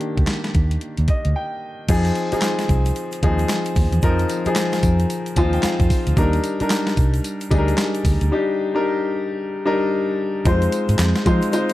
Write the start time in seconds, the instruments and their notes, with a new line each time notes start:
Already playing: grand piano D#3 A#3 D4 G4
0.01 closed hi-hat
0.17 fingered electric bass D2, kick, closed hi-hat
0.27 snare, clap, closed hi-hat
0.44 snare, closed hi-hat
0.55 fingered electric bass D#2, kick, closed hi-hat
0.71 closed hi-hat
0.81 closed hi-hat
0.97 fingered electric bass D#2, closed hi-hat
1.08 grand piano D#5, kick, closed hi-hat
1.25 fingered electric bass D2, closed hi-hat
1.36 grand piano G5
1.89 fingered electric bass F2, grand piano F3 C4 D#4 G#4, kick, closed hi-hat, crash, shaker
2.05 closed hi-hat, shaker
2.15 closed hi-hat, shaker
2.32 grand piano F3 C4 D#4 G#4, muted fingered electric bass stroke, closed hi-hat, shaker
2.42 snare, clap, closed hi-hat, shaker
2.59 snare, closed hi-hat, shaker
2.69 fingered electric bass C2, kick, closed hi-hat, shaker
2.86 closed hi-hat, shaker
2.96 closed hi-hat, shaker
3.12 closed hi-hat, shaker
3.23 fingered electric bass D#2, grand piano F3 C4 D#4 G#4, kick, closed hi-hat
3.39 closed hi-hat, shaker
3.49 snare, clap, closed hi-hat, shaker
3.65 closed hi-hat, shaker
3.76 fingered electric bass D#2, kick, open hi-hat, shaker
3.92 fingered electric bass E2, closed hi-hat, shaker
4.02 fingered electric bass F2, grand piano F3 C4 D#4 A#4, kick, closed hi-hat, shaker
4.19 closed hi-hat, shaker
4.29 closed hi-hat, tambourine, shaker
4.45 grand piano F3 C4 D#4 G#4, muted fingered electric bass stroke, closed hi-hat, shaker
4.56 snare, clap, closed hi-hat, tambourine, shaker
4.73 snare, closed hi-hat, shaker
4.83 fingered electric bass F2, kick, closed hi-hat, tambourine, shaker
4.99 closed hi-hat, shaker
5.10 closed hi-hat, tambourine, shaker
5.26 closed hi-hat, shaker
5.36 fingered electric bass D#2, grand piano F3 C4 D#4 F4 G#5, kick, closed hi-hat, tambourine
5.53 grand piano G5, closed hi-hat, shaker
5.63 grand piano F5, muted fingered electric bass stroke, snare, clap, closed hi-hat, tambourine, shaker
5.80 fingered electric bass F2, kick, closed hi-hat, shaker
5.90 kick, open hi-hat, tambourine, shaker
6.07 fingered electric bass D2, closed hi-hat, shaker
6.17 fingered electric bass D#2, grand piano G3 D4 D#4 A#4, kick, closed hi-hat, shaker
6.33 closed hi-hat, shaker
6.44 closed hi-hat, tambourine, shaker
6.60 grand piano G3 D4 D#4 A#4, muted fingered electric bass stroke, closed hi-hat, shaker
6.70 snare, clap, closed hi-hat, tambourine, shaker
6.87 snare, closed hi-hat, shaker
6.97 fingered electric bass C2, kick, closed hi-hat, tambourine, shaker
7.14 closed hi-hat, shaker
7.24 closed hi-hat, tambourine, shaker
7.41 closed hi-hat, shaker
7.50 fingered electric bass D2, grand piano G3 D4 D#4 G#4, kick, closed hi-hat, tambourine
7.58 grand piano A#4
7.68 closed hi-hat, shaker
7.78 snare, clap, closed hi-hat, tambourine, shaker
7.95 closed hi-hat, shaker
8.05 fingered electric bass D2, kick, open hi-hat, tambourine, shaker
8.21 fingered electric bass D2, closed hi-hat, shaker
8.32 grand piano G3 D4 D#4 G4
8.74 grand piano G3 D4 D#4 A#4
9.65 grand piano G3 D4 D#4 A#4
10.45 fingered electric bass F2, grand piano G#3 C4 D#4 F4 C5, kick, closed hi-hat, shaker
10.62 closed hi-hat, shaker
10.72 closed hi-hat, tambourine, shaker
10.89 fingered electric bass G#2, closed hi-hat, shaker
10.99 fingered electric bass F2, snare, clap, closed hi-hat, tambourine, shaker
11.15 snare, closed hi-hat, shaker
11.26 fingered electric bass F3, grand piano G#3 C4 D#4 F4 C5, kick, closed hi-hat, tambourine
11.42 closed hi-hat, shaker
11.52 grand piano G#3 C4 D#4 F4 C5, closed hi-hat, tambourine, shaker
11.69 closed hi-hat, shaker